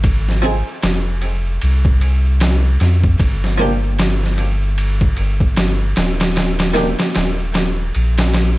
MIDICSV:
0, 0, Header, 1, 4, 480
1, 0, Start_track
1, 0, Tempo, 789474
1, 26, Time_signature, 4, 2, 24, 8
1, 5218, End_track
2, 0, Start_track
2, 0, Title_t, "Harpsichord"
2, 0, Program_c, 0, 6
2, 0, Note_on_c, 0, 53, 81
2, 0, Note_on_c, 0, 60, 74
2, 0, Note_on_c, 0, 63, 78
2, 0, Note_on_c, 0, 68, 89
2, 238, Note_off_c, 0, 53, 0
2, 242, Note_off_c, 0, 60, 0
2, 245, Note_off_c, 0, 63, 0
2, 249, Note_off_c, 0, 68, 0
2, 256, Note_on_c, 0, 53, 80
2, 263, Note_on_c, 0, 60, 72
2, 270, Note_on_c, 0, 63, 78
2, 277, Note_on_c, 0, 68, 90
2, 1929, Note_off_c, 0, 53, 0
2, 1932, Note_off_c, 0, 60, 0
2, 1936, Note_off_c, 0, 63, 0
2, 1940, Note_off_c, 0, 68, 0
2, 2174, Note_on_c, 0, 53, 90
2, 2184, Note_on_c, 0, 58, 76
2, 2190, Note_on_c, 0, 62, 77
2, 2198, Note_on_c, 0, 67, 88
2, 3848, Note_off_c, 0, 53, 0
2, 3853, Note_off_c, 0, 58, 0
2, 3856, Note_off_c, 0, 62, 0
2, 3860, Note_off_c, 0, 67, 0
2, 4096, Note_on_c, 0, 51, 81
2, 4101, Note_on_c, 0, 58, 78
2, 4110, Note_on_c, 0, 62, 75
2, 4117, Note_on_c, 0, 67, 89
2, 5218, Note_off_c, 0, 51, 0
2, 5218, Note_off_c, 0, 58, 0
2, 5218, Note_off_c, 0, 62, 0
2, 5218, Note_off_c, 0, 67, 0
2, 5218, End_track
3, 0, Start_track
3, 0, Title_t, "Sub bass"
3, 0, Program_c, 1, 38
3, 0, Note_on_c, 1, 32, 106
3, 381, Note_off_c, 1, 32, 0
3, 505, Note_on_c, 1, 29, 96
3, 966, Note_off_c, 1, 29, 0
3, 989, Note_on_c, 1, 36, 95
3, 1689, Note_off_c, 1, 36, 0
3, 1705, Note_on_c, 1, 41, 84
3, 1922, Note_off_c, 1, 41, 0
3, 1946, Note_on_c, 1, 31, 102
3, 3127, Note_off_c, 1, 31, 0
3, 3152, Note_on_c, 1, 31, 89
3, 3610, Note_off_c, 1, 31, 0
3, 3630, Note_on_c, 1, 27, 103
3, 4223, Note_off_c, 1, 27, 0
3, 4354, Note_on_c, 1, 27, 97
3, 4811, Note_off_c, 1, 27, 0
3, 4836, Note_on_c, 1, 34, 95
3, 5217, Note_off_c, 1, 34, 0
3, 5218, End_track
4, 0, Start_track
4, 0, Title_t, "Drums"
4, 22, Note_on_c, 9, 51, 86
4, 23, Note_on_c, 9, 36, 110
4, 83, Note_off_c, 9, 51, 0
4, 84, Note_off_c, 9, 36, 0
4, 174, Note_on_c, 9, 38, 40
4, 234, Note_off_c, 9, 38, 0
4, 264, Note_on_c, 9, 51, 66
4, 325, Note_off_c, 9, 51, 0
4, 501, Note_on_c, 9, 51, 84
4, 507, Note_on_c, 9, 38, 118
4, 562, Note_off_c, 9, 51, 0
4, 568, Note_off_c, 9, 38, 0
4, 739, Note_on_c, 9, 51, 67
4, 800, Note_off_c, 9, 51, 0
4, 981, Note_on_c, 9, 51, 86
4, 1042, Note_off_c, 9, 51, 0
4, 1124, Note_on_c, 9, 36, 97
4, 1185, Note_off_c, 9, 36, 0
4, 1224, Note_on_c, 9, 51, 69
4, 1285, Note_off_c, 9, 51, 0
4, 1461, Note_on_c, 9, 51, 93
4, 1467, Note_on_c, 9, 38, 117
4, 1522, Note_off_c, 9, 51, 0
4, 1527, Note_off_c, 9, 38, 0
4, 1703, Note_on_c, 9, 51, 69
4, 1708, Note_on_c, 9, 38, 55
4, 1764, Note_off_c, 9, 51, 0
4, 1769, Note_off_c, 9, 38, 0
4, 1845, Note_on_c, 9, 36, 97
4, 1906, Note_off_c, 9, 36, 0
4, 1942, Note_on_c, 9, 51, 90
4, 1943, Note_on_c, 9, 36, 111
4, 2003, Note_off_c, 9, 51, 0
4, 2004, Note_off_c, 9, 36, 0
4, 2091, Note_on_c, 9, 38, 48
4, 2152, Note_off_c, 9, 38, 0
4, 2184, Note_on_c, 9, 51, 64
4, 2245, Note_off_c, 9, 51, 0
4, 2423, Note_on_c, 9, 51, 91
4, 2429, Note_on_c, 9, 38, 112
4, 2484, Note_off_c, 9, 51, 0
4, 2489, Note_off_c, 9, 38, 0
4, 2574, Note_on_c, 9, 38, 39
4, 2635, Note_off_c, 9, 38, 0
4, 2662, Note_on_c, 9, 51, 72
4, 2723, Note_off_c, 9, 51, 0
4, 2905, Note_on_c, 9, 51, 91
4, 2965, Note_off_c, 9, 51, 0
4, 3046, Note_on_c, 9, 36, 102
4, 3107, Note_off_c, 9, 36, 0
4, 3141, Note_on_c, 9, 51, 69
4, 3202, Note_off_c, 9, 51, 0
4, 3286, Note_on_c, 9, 36, 94
4, 3347, Note_off_c, 9, 36, 0
4, 3383, Note_on_c, 9, 51, 88
4, 3388, Note_on_c, 9, 38, 120
4, 3444, Note_off_c, 9, 51, 0
4, 3449, Note_off_c, 9, 38, 0
4, 3624, Note_on_c, 9, 51, 81
4, 3629, Note_on_c, 9, 38, 106
4, 3684, Note_off_c, 9, 51, 0
4, 3690, Note_off_c, 9, 38, 0
4, 3769, Note_on_c, 9, 51, 76
4, 3775, Note_on_c, 9, 38, 106
4, 3830, Note_off_c, 9, 51, 0
4, 3836, Note_off_c, 9, 38, 0
4, 3867, Note_on_c, 9, 51, 78
4, 3872, Note_on_c, 9, 38, 105
4, 3927, Note_off_c, 9, 51, 0
4, 3933, Note_off_c, 9, 38, 0
4, 4006, Note_on_c, 9, 51, 78
4, 4011, Note_on_c, 9, 38, 103
4, 4066, Note_off_c, 9, 51, 0
4, 4072, Note_off_c, 9, 38, 0
4, 4103, Note_on_c, 9, 51, 76
4, 4109, Note_on_c, 9, 38, 97
4, 4164, Note_off_c, 9, 51, 0
4, 4170, Note_off_c, 9, 38, 0
4, 4247, Note_on_c, 9, 51, 82
4, 4253, Note_on_c, 9, 38, 106
4, 4308, Note_off_c, 9, 51, 0
4, 4314, Note_off_c, 9, 38, 0
4, 4345, Note_on_c, 9, 51, 92
4, 4350, Note_on_c, 9, 38, 113
4, 4406, Note_off_c, 9, 51, 0
4, 4411, Note_off_c, 9, 38, 0
4, 4585, Note_on_c, 9, 51, 78
4, 4591, Note_on_c, 9, 38, 113
4, 4646, Note_off_c, 9, 51, 0
4, 4652, Note_off_c, 9, 38, 0
4, 4831, Note_on_c, 9, 51, 61
4, 4892, Note_off_c, 9, 51, 0
4, 4971, Note_on_c, 9, 51, 85
4, 4976, Note_on_c, 9, 38, 114
4, 5032, Note_off_c, 9, 51, 0
4, 5037, Note_off_c, 9, 38, 0
4, 5067, Note_on_c, 9, 51, 77
4, 5073, Note_on_c, 9, 38, 100
4, 5128, Note_off_c, 9, 51, 0
4, 5134, Note_off_c, 9, 38, 0
4, 5218, End_track
0, 0, End_of_file